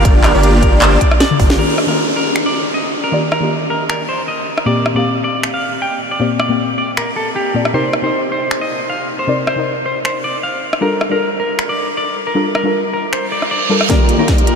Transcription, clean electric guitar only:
0, 0, Header, 1, 2, 480
1, 0, Start_track
1, 0, Tempo, 384615
1, 62, Time_signature, 4, 2, 24, 8
1, 18163, End_track
2, 0, Start_track
2, 0, Title_t, "Clean electric guitar"
2, 0, Program_c, 0, 27
2, 0, Note_on_c, 0, 70, 93
2, 176, Note_off_c, 0, 70, 0
2, 303, Note_on_c, 0, 70, 96
2, 608, Note_off_c, 0, 70, 0
2, 783, Note_on_c, 0, 70, 92
2, 939, Note_off_c, 0, 70, 0
2, 1023, Note_on_c, 0, 72, 96
2, 1179, Note_off_c, 0, 72, 0
2, 1261, Note_on_c, 0, 74, 96
2, 1419, Note_off_c, 0, 74, 0
2, 1501, Note_on_c, 0, 74, 94
2, 1807, Note_off_c, 0, 74, 0
2, 1981, Note_on_c, 0, 70, 90
2, 2208, Note_off_c, 0, 70, 0
2, 2349, Note_on_c, 0, 70, 82
2, 2575, Note_off_c, 0, 70, 0
2, 2702, Note_on_c, 0, 70, 82
2, 2929, Note_off_c, 0, 70, 0
2, 3070, Note_on_c, 0, 74, 86
2, 3295, Note_off_c, 0, 74, 0
2, 3422, Note_on_c, 0, 75, 82
2, 3649, Note_off_c, 0, 75, 0
2, 3790, Note_on_c, 0, 70, 81
2, 4016, Note_off_c, 0, 70, 0
2, 4140, Note_on_c, 0, 70, 86
2, 4447, Note_off_c, 0, 70, 0
2, 4621, Note_on_c, 0, 70, 81
2, 4778, Note_off_c, 0, 70, 0
2, 4861, Note_on_c, 0, 70, 85
2, 5019, Note_off_c, 0, 70, 0
2, 5101, Note_on_c, 0, 72, 80
2, 5259, Note_off_c, 0, 72, 0
2, 5341, Note_on_c, 0, 75, 84
2, 5647, Note_off_c, 0, 75, 0
2, 5821, Note_on_c, 0, 74, 93
2, 6048, Note_off_c, 0, 74, 0
2, 6190, Note_on_c, 0, 74, 83
2, 6416, Note_off_c, 0, 74, 0
2, 6541, Note_on_c, 0, 74, 82
2, 6769, Note_off_c, 0, 74, 0
2, 6911, Note_on_c, 0, 77, 80
2, 7136, Note_off_c, 0, 77, 0
2, 7262, Note_on_c, 0, 79, 80
2, 7489, Note_off_c, 0, 79, 0
2, 7630, Note_on_c, 0, 74, 80
2, 7855, Note_off_c, 0, 74, 0
2, 7982, Note_on_c, 0, 74, 85
2, 8288, Note_off_c, 0, 74, 0
2, 8462, Note_on_c, 0, 74, 79
2, 8619, Note_off_c, 0, 74, 0
2, 8702, Note_on_c, 0, 70, 84
2, 8859, Note_off_c, 0, 70, 0
2, 8941, Note_on_c, 0, 69, 82
2, 9098, Note_off_c, 0, 69, 0
2, 9182, Note_on_c, 0, 67, 84
2, 9488, Note_off_c, 0, 67, 0
2, 9662, Note_on_c, 0, 72, 96
2, 9889, Note_off_c, 0, 72, 0
2, 10031, Note_on_c, 0, 72, 80
2, 10256, Note_off_c, 0, 72, 0
2, 10381, Note_on_c, 0, 72, 80
2, 10609, Note_off_c, 0, 72, 0
2, 10751, Note_on_c, 0, 75, 84
2, 10976, Note_off_c, 0, 75, 0
2, 11101, Note_on_c, 0, 77, 79
2, 11329, Note_off_c, 0, 77, 0
2, 11470, Note_on_c, 0, 72, 83
2, 11695, Note_off_c, 0, 72, 0
2, 11822, Note_on_c, 0, 72, 86
2, 12128, Note_off_c, 0, 72, 0
2, 12301, Note_on_c, 0, 72, 78
2, 12459, Note_off_c, 0, 72, 0
2, 12541, Note_on_c, 0, 72, 84
2, 12699, Note_off_c, 0, 72, 0
2, 12782, Note_on_c, 0, 74, 84
2, 12939, Note_off_c, 0, 74, 0
2, 13021, Note_on_c, 0, 77, 85
2, 13327, Note_off_c, 0, 77, 0
2, 13502, Note_on_c, 0, 70, 91
2, 13729, Note_off_c, 0, 70, 0
2, 13872, Note_on_c, 0, 70, 85
2, 14096, Note_off_c, 0, 70, 0
2, 14223, Note_on_c, 0, 70, 85
2, 14449, Note_off_c, 0, 70, 0
2, 14592, Note_on_c, 0, 74, 88
2, 14816, Note_off_c, 0, 74, 0
2, 14942, Note_on_c, 0, 74, 87
2, 15169, Note_off_c, 0, 74, 0
2, 15310, Note_on_c, 0, 70, 83
2, 15535, Note_off_c, 0, 70, 0
2, 15662, Note_on_c, 0, 70, 85
2, 15968, Note_off_c, 0, 70, 0
2, 16143, Note_on_c, 0, 70, 81
2, 16299, Note_off_c, 0, 70, 0
2, 16382, Note_on_c, 0, 72, 87
2, 16539, Note_off_c, 0, 72, 0
2, 16622, Note_on_c, 0, 74, 80
2, 16779, Note_off_c, 0, 74, 0
2, 16861, Note_on_c, 0, 74, 85
2, 17168, Note_off_c, 0, 74, 0
2, 17342, Note_on_c, 0, 70, 91
2, 17569, Note_off_c, 0, 70, 0
2, 17711, Note_on_c, 0, 70, 83
2, 17936, Note_off_c, 0, 70, 0
2, 18062, Note_on_c, 0, 70, 87
2, 18163, Note_off_c, 0, 70, 0
2, 18163, End_track
0, 0, End_of_file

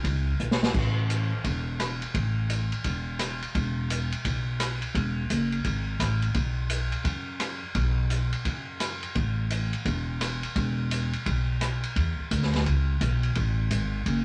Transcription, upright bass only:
0, 0, Header, 1, 3, 480
1, 0, Start_track
1, 0, Key_signature, 4, "major"
1, 0, Tempo, 350467
1, 1023, Time_signature, 4, 2, 24, 8
1, 19513, End_track
2, 0, Start_track
2, 0, Title_t, "Upright bass"
2, 0, Program_c, 0, 32
2, 56, Note_on_c, 0, 37, 78
2, 467, Note_off_c, 0, 37, 0
2, 545, Note_on_c, 0, 35, 79
2, 952, Note_off_c, 0, 35, 0
2, 1017, Note_on_c, 0, 33, 87
2, 1787, Note_off_c, 0, 33, 0
2, 1978, Note_on_c, 0, 28, 78
2, 2747, Note_off_c, 0, 28, 0
2, 2938, Note_on_c, 0, 33, 83
2, 3706, Note_off_c, 0, 33, 0
2, 3898, Note_on_c, 0, 28, 74
2, 4666, Note_off_c, 0, 28, 0
2, 4860, Note_on_c, 0, 28, 82
2, 5627, Note_off_c, 0, 28, 0
2, 5818, Note_on_c, 0, 35, 74
2, 6586, Note_off_c, 0, 35, 0
2, 6774, Note_on_c, 0, 28, 90
2, 7160, Note_off_c, 0, 28, 0
2, 7261, Note_on_c, 0, 30, 88
2, 7668, Note_off_c, 0, 30, 0
2, 7733, Note_on_c, 0, 32, 80
2, 8144, Note_off_c, 0, 32, 0
2, 8210, Note_on_c, 0, 33, 80
2, 8622, Note_off_c, 0, 33, 0
2, 8694, Note_on_c, 0, 35, 85
2, 9465, Note_off_c, 0, 35, 0
2, 9648, Note_on_c, 0, 42, 78
2, 10421, Note_off_c, 0, 42, 0
2, 10613, Note_on_c, 0, 35, 88
2, 11385, Note_off_c, 0, 35, 0
2, 11572, Note_on_c, 0, 42, 77
2, 12345, Note_off_c, 0, 42, 0
2, 12541, Note_on_c, 0, 33, 92
2, 13310, Note_off_c, 0, 33, 0
2, 13496, Note_on_c, 0, 28, 83
2, 14268, Note_off_c, 0, 28, 0
2, 14460, Note_on_c, 0, 28, 92
2, 15230, Note_off_c, 0, 28, 0
2, 15425, Note_on_c, 0, 35, 81
2, 16193, Note_off_c, 0, 35, 0
2, 16381, Note_on_c, 0, 40, 81
2, 16668, Note_off_c, 0, 40, 0
2, 16861, Note_on_c, 0, 38, 91
2, 17329, Note_off_c, 0, 38, 0
2, 17342, Note_on_c, 0, 37, 77
2, 17809, Note_off_c, 0, 37, 0
2, 17816, Note_on_c, 0, 35, 86
2, 18286, Note_off_c, 0, 35, 0
2, 18299, Note_on_c, 0, 33, 88
2, 18768, Note_off_c, 0, 33, 0
2, 18774, Note_on_c, 0, 32, 89
2, 19245, Note_off_c, 0, 32, 0
2, 19257, Note_on_c, 0, 30, 83
2, 19513, Note_off_c, 0, 30, 0
2, 19513, End_track
3, 0, Start_track
3, 0, Title_t, "Muted upright bass strokes"
3, 16697, Note_on_c, 9, 29, 37
3, 16833, Note_off_c, 9, 29, 0
3, 19513, End_track
0, 0, End_of_file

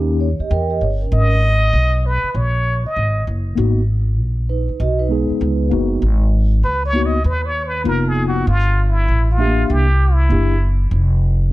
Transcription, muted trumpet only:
0, 0, Header, 1, 2, 480
1, 0, Start_track
1, 0, Tempo, 612245
1, 880, Time_signature, 4, 2, 24, 8
1, 9036, End_track
2, 0, Start_track
2, 0, Title_t, "Muted trumpet"
2, 0, Program_c, 0, 59
2, 891, Note_on_c, 0, 75, 117
2, 1612, Note_on_c, 0, 71, 94
2, 1624, Note_off_c, 0, 75, 0
2, 1848, Note_on_c, 0, 73, 89
2, 1860, Note_off_c, 0, 71, 0
2, 2235, Note_off_c, 0, 73, 0
2, 2244, Note_on_c, 0, 75, 85
2, 2544, Note_off_c, 0, 75, 0
2, 5211, Note_on_c, 0, 71, 98
2, 5354, Note_off_c, 0, 71, 0
2, 5371, Note_on_c, 0, 73, 103
2, 5535, Note_on_c, 0, 75, 94
2, 5547, Note_off_c, 0, 73, 0
2, 5686, Note_off_c, 0, 75, 0
2, 5690, Note_on_c, 0, 71, 92
2, 5844, Note_on_c, 0, 73, 91
2, 5856, Note_off_c, 0, 71, 0
2, 6011, Note_on_c, 0, 71, 89
2, 6023, Note_off_c, 0, 73, 0
2, 6165, Note_off_c, 0, 71, 0
2, 6169, Note_on_c, 0, 70, 92
2, 6333, Note_on_c, 0, 68, 88
2, 6345, Note_off_c, 0, 70, 0
2, 6486, Note_off_c, 0, 68, 0
2, 6492, Note_on_c, 0, 66, 93
2, 6635, Note_off_c, 0, 66, 0
2, 6653, Note_on_c, 0, 65, 97
2, 6971, Note_on_c, 0, 64, 84
2, 6983, Note_off_c, 0, 65, 0
2, 7285, Note_off_c, 0, 64, 0
2, 7299, Note_on_c, 0, 65, 86
2, 7616, Note_on_c, 0, 67, 91
2, 7628, Note_off_c, 0, 65, 0
2, 7940, Note_on_c, 0, 64, 78
2, 7951, Note_off_c, 0, 67, 0
2, 8409, Note_off_c, 0, 64, 0
2, 9036, End_track
0, 0, End_of_file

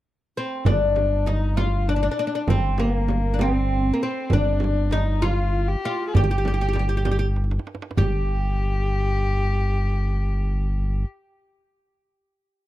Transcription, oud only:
0, 0, Header, 1, 2, 480
1, 0, Start_track
1, 0, Tempo, 610376
1, 514, Time_signature, 6, 3, 24, 8
1, 9964, End_track
2, 0, Start_track
2, 0, Title_t, "Oud"
2, 0, Program_c, 0, 24
2, 294, Note_on_c, 0, 60, 66
2, 518, Note_off_c, 0, 60, 0
2, 521, Note_on_c, 0, 62, 73
2, 997, Note_off_c, 0, 62, 0
2, 1000, Note_on_c, 0, 63, 63
2, 1233, Note_off_c, 0, 63, 0
2, 1236, Note_on_c, 0, 65, 78
2, 1457, Note_off_c, 0, 65, 0
2, 1485, Note_on_c, 0, 62, 73
2, 1534, Note_off_c, 0, 62, 0
2, 1543, Note_on_c, 0, 62, 53
2, 1585, Note_off_c, 0, 62, 0
2, 1594, Note_on_c, 0, 62, 58
2, 1647, Note_off_c, 0, 62, 0
2, 1663, Note_on_c, 0, 62, 56
2, 1711, Note_off_c, 0, 62, 0
2, 1724, Note_on_c, 0, 62, 67
2, 1771, Note_off_c, 0, 62, 0
2, 1786, Note_on_c, 0, 62, 51
2, 1832, Note_off_c, 0, 62, 0
2, 1849, Note_on_c, 0, 62, 59
2, 1894, Note_off_c, 0, 62, 0
2, 1967, Note_on_c, 0, 60, 72
2, 2199, Note_on_c, 0, 58, 69
2, 2205, Note_off_c, 0, 60, 0
2, 2624, Note_on_c, 0, 62, 50
2, 2630, Note_off_c, 0, 58, 0
2, 2674, Note_off_c, 0, 62, 0
2, 2682, Note_on_c, 0, 60, 75
2, 3092, Note_off_c, 0, 60, 0
2, 3095, Note_on_c, 0, 58, 57
2, 3149, Note_off_c, 0, 58, 0
2, 3168, Note_on_c, 0, 60, 67
2, 3403, Note_off_c, 0, 60, 0
2, 3407, Note_on_c, 0, 62, 80
2, 3845, Note_off_c, 0, 62, 0
2, 3873, Note_on_c, 0, 63, 76
2, 4103, Note_off_c, 0, 63, 0
2, 4106, Note_on_c, 0, 65, 88
2, 4555, Note_off_c, 0, 65, 0
2, 4602, Note_on_c, 0, 65, 77
2, 4842, Note_off_c, 0, 65, 0
2, 4849, Note_on_c, 0, 67, 80
2, 4894, Note_off_c, 0, 67, 0
2, 4905, Note_on_c, 0, 67, 56
2, 4952, Note_off_c, 0, 67, 0
2, 4962, Note_on_c, 0, 67, 60
2, 5008, Note_off_c, 0, 67, 0
2, 5018, Note_on_c, 0, 67, 51
2, 5067, Note_off_c, 0, 67, 0
2, 5093, Note_on_c, 0, 67, 53
2, 5132, Note_off_c, 0, 67, 0
2, 5141, Note_on_c, 0, 67, 48
2, 5189, Note_off_c, 0, 67, 0
2, 5200, Note_on_c, 0, 67, 55
2, 5248, Note_off_c, 0, 67, 0
2, 5257, Note_on_c, 0, 67, 47
2, 5286, Note_off_c, 0, 67, 0
2, 5295, Note_on_c, 0, 67, 55
2, 5333, Note_off_c, 0, 67, 0
2, 5342, Note_on_c, 0, 67, 45
2, 5407, Note_off_c, 0, 67, 0
2, 5417, Note_on_c, 0, 67, 58
2, 5473, Note_off_c, 0, 67, 0
2, 5482, Note_on_c, 0, 67, 51
2, 5535, Note_off_c, 0, 67, 0
2, 5544, Note_on_c, 0, 67, 56
2, 5586, Note_off_c, 0, 67, 0
2, 5595, Note_on_c, 0, 67, 56
2, 5645, Note_off_c, 0, 67, 0
2, 5654, Note_on_c, 0, 67, 61
2, 5712, Note_off_c, 0, 67, 0
2, 6275, Note_on_c, 0, 67, 72
2, 8688, Note_off_c, 0, 67, 0
2, 9964, End_track
0, 0, End_of_file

